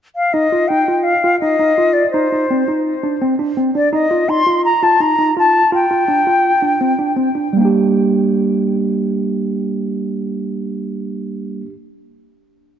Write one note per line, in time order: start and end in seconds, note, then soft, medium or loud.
0.16 0.35 F5 medium
0.33 0.46 D#4 medium
0.33 0.70 D#5 medium
0.52 0.65 F4 medium
0.68 0.83 D#4 medium
0.68 1.05 G5 medium
0.88 1.13 F4 medium
1.03 1.39 F5 medium
1.24 1.36 F4 medium
1.40 1.54 D#4 medium
1.40 1.95 D#5 medium
1.59 1.72 D#4 medium
1.78 2.03 F4 medium
1.93 2.10 D5 medium
2.11 2.26 D#4 medium
2.11 2.80 C5 medium
2.32 2.44 D#4 medium
2.51 2.62 C4 medium
2.68 2.92 D#4 medium
3.03 3.16 D4 medium
3.21 3.34 C4 medium
3.39 3.51 D4 medium
3.57 3.69 C4 medium
3.75 3.87 D4 medium
3.75 3.92 D5 medium
3.93 4.05 D#4 medium
3.93 4.31 D#5 medium
4.11 4.23 F4 medium
4.29 4.41 D#4 medium
4.29 4.64 C6 medium
4.47 4.71 F4 medium
4.65 4.85 A#5 medium
4.83 4.95 F4 medium
4.83 5.03 A5 medium
5.00 5.13 D#4 medium
5.00 5.37 A#5 medium
5.19 5.31 D#4 medium
5.37 5.61 F4 medium
5.37 5.71 A5 medium
5.72 5.85 F4 medium
5.72 7.13 G5 medium
5.91 6.03 F4 medium
6.08 6.21 D4 medium
6.27 6.51 F4 medium
6.62 6.75 D4 medium
6.81 6.93 C4 medium
6.99 7.11 D4 medium
7.16 7.28 C4 medium
7.35 7.47 D4 medium
7.53 11.61 G3 medium
7.57 11.65 A#3 medium
7.61 11.69 D4 medium
7.61 11.73 G4 medium